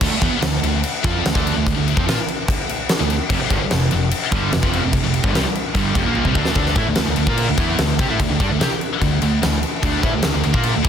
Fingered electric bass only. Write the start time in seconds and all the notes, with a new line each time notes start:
0.02 D2
0.12 muted fingered electric bass stroke
0.22 E2
0.42 D2
0.62 D2
1.05 F2
1.25 D2
1.36 D2
1.57 D2
1.78 D2
1.98 F2
2.08 A#2
3.00 D2
3.30 F1
3.42 muted fingered electric bass stroke
3.51 G1
3.72 F1
3.93 F1
4.33 G1
4.54 F1
4.63 F1
4.85 F1
5.05 F1
5.24 G1
5.34 C2
5.75 G1
5.96 F1
6.07 A#1
6.25 C2
6.35 D2
6.56 D2
6.76 A2
6.87 D2
6.97 D2
7.07 D2
7.17 D2
7.27 A#2
7.48 D2
7.58 E2
7.79 D2
8.00 C3
8.10 A2
8.20 D2
8.30 D2
8.40 G2
8.50 D2
8.60 C3
8.72 muted fingered electric bass stroke
9.01 D2
9.23 D2
9.44 D2
9.83 D2
10.04 A2
10.14 D2
10.24 D2
10.35 D2
10.45 D2
10.54 A#2
10.76 D2
10.85 E2